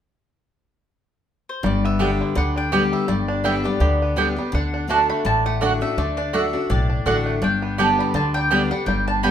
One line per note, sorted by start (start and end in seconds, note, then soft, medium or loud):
1.49 1.65 C5 medium
1.63 2.21 G1 medium
1.63 2.33 G2 medium
1.63 2.36 G3 medium
1.63 1.84 D5 medium
1.85 3.25 B3 medium
1.85 2.39 E5 medium
1.99 2.34 D3 medium
1.99 2.35 G3 medium
1.99 2.10 B3 medium
1.99 2.35 B3 medium
1.99 2.56 D4 medium
1.99 2.10 G4 medium
1.99 2.35 G4 medium
1.99 2.10 D5 medium
1.99 2.10 G5 medium
2.21 2.70 D3 soft
2.35 2.93 D2 medium
2.35 2.71 D3 medium
2.35 2.88 G3 medium
2.35 2.55 F#5 medium
2.56 3.28 D4 medium
2.56 2.90 G5 medium
2.72 3.07 D3 medium
2.72 3.07 G3 medium
2.72 2.82 B3 medium
2.72 3.07 B3 medium
2.72 2.82 G4 medium
2.72 3.25 G4 medium
2.72 3.08 G4 medium
2.72 2.83 D5 medium
2.72 2.83 G5 loud
2.92 3.07 G3 medium
2.92 3.09 E5 medium
3.08 3.65 G1 medium
3.08 3.77 G2 medium
3.08 3.43 G3 medium
3.08 3.46 D5 medium
3.28 4.18 D4 medium
3.44 3.63 D3 medium
3.44 3.97 G3 medium
3.44 3.64 G3 medium
3.44 3.54 B3 medium
3.44 3.64 B3 medium
3.44 3.55 G4 medium
3.44 3.63 G4 medium
3.44 3.55 D5 medium
3.44 3.66 E5 loud
3.44 3.55 G5 medium
3.64 4.01 B3 medium
3.64 3.81 B3 soft
3.64 3.80 G4 medium
3.64 4.33 D5 medium
3.80 4.37 D2 medium
3.80 4.15 D3 medium
3.80 4.33 G4 medium
4.02 4.51 B3 medium
4.16 4.36 D3 medium
4.16 4.36 G3 medium
4.16 4.27 B3 loud
4.16 4.36 B3 medium
4.16 4.55 D4 medium
4.16 4.35 G4 medium
4.16 4.27 G4 medium
4.16 4.27 D5 medium
4.16 4.27 G5 medium
4.36 4.54 G3 medium
4.36 4.53 B3 soft
4.36 4.52 G4 medium
4.52 5.10 D2 medium
4.52 4.86 D3 medium
4.52 4.74 D4 medium
4.52 4.88 F#5 medium
4.74 4.91 D4 medium
4.88 5.23 D3 medium
4.88 5.23 A3 medium
4.88 4.99 A3 medium
4.88 5.24 D4 medium
4.88 5.61 D4 medium
4.88 5.24 F#4 medium
4.88 5.00 F#4 medium
4.88 5.00 D5 medium
4.88 5.00 F#5 medium
4.88 5.09 A5 loud
5.09 5.45 A3 medium
5.09 5.24 B5 medium
5.25 5.82 A1 medium
5.25 5.94 A2 medium
5.25 5.78 D3 medium
5.25 5.44 A5 loud
5.46 5.81 A3 medium
5.46 5.81 F#5 medium
5.61 5.80 D3 medium
5.61 5.71 A3 medium
5.61 5.81 A3 medium
5.61 6.17 D4 medium
5.61 5.81 D4 medium
5.61 5.71 F#4 medium
5.61 5.80 F#4 medium
5.61 5.72 D5 medium
5.61 5.72 F#5 medium
5.81 5.97 A3 medium
5.81 5.98 D4 soft
5.81 5.97 F#4 medium
5.81 5.98 E5 medium
5.97 6.54 D2 medium
5.97 6.32 D3 medium
5.97 6.32 A3 medium
5.97 6.16 D5 medium
6.17 6.54 D4 medium
6.17 6.34 D5 medium
6.33 6.53 D3 medium
6.33 6.44 A3 medium
6.33 6.86 A3 medium
6.33 6.53 A3 medium
6.33 6.53 D4 medium
6.33 6.44 F#4 medium
6.33 6.52 F#4 medium
6.33 6.44 D5 medium
6.33 6.71 E5 medium
6.33 6.44 F#5 medium
6.53 6.70 D4 medium
6.53 6.69 F#4 medium
6.70 7.01 B1 medium
6.70 7.39 A2 medium
6.70 6.90 D4 medium
6.70 7.08 D5 medium
6.90 7.06 D4 medium
7.06 7.37 A1 medium
7.06 7.41 D3 medium
7.06 7.16 A3 medium
7.06 7.41 A3 medium
7.06 7.42 D4 medium
7.06 7.41 D4 medium
7.06 7.16 F#4 medium
7.06 7.41 F#4 medium
7.06 7.16 D5 medium
7.06 7.17 F#5 medium
7.06 7.33 F#5 medium
7.26 7.42 A3 medium
7.42 7.99 G1 medium
7.42 8.11 G2 medium
7.42 8.51 D4 medium
7.42 7.77 G5 medium
7.62 9.02 B3 medium
7.78 8.13 D3 medium
7.78 8.14 G3 medium
7.78 7.88 B3 medium
7.78 8.14 B3 medium
7.78 8.31 G4 medium
7.78 7.89 G4 medium
7.78 8.14 G4 medium
7.78 7.89 D5 medium
7.78 7.89 G5 loud
7.78 7.98 A5 loud
7.99 8.35 G3 medium
7.99 8.15 B5 medium
8.14 8.71 D2 medium
8.14 8.50 D3 medium
8.14 8.67 D3 medium
8.14 8.34 A5 medium
8.34 8.71 G3 medium
8.34 8.68 G5 loud
8.50 8.70 D3 medium
8.50 8.70 G3 medium
8.50 8.61 B3 medium
8.50 8.71 B3 medium
8.50 9.08 D4 medium
8.50 8.61 G4 loud
8.50 8.70 G4 medium
8.50 8.61 D5 loud
8.50 8.61 G5 loud
8.71 8.87 G3 medium
8.71 8.87 B3 soft
8.71 8.87 G4 medium
8.71 8.86 F#5 medium
8.86 9.31 G1 medium
8.86 9.31 G2 medium
8.86 9.24 G3 medium
8.86 9.06 G5 medium
9.08 9.31 D4 medium
9.08 9.23 A5 loud
9.23 9.31 D3 medium
9.23 9.31 G3 medium
9.23 9.31 B3 medium
9.23 9.31 G4 medium
9.23 9.31 D5 medium
9.23 9.31 G5 medium
9.23 9.31 B5 loud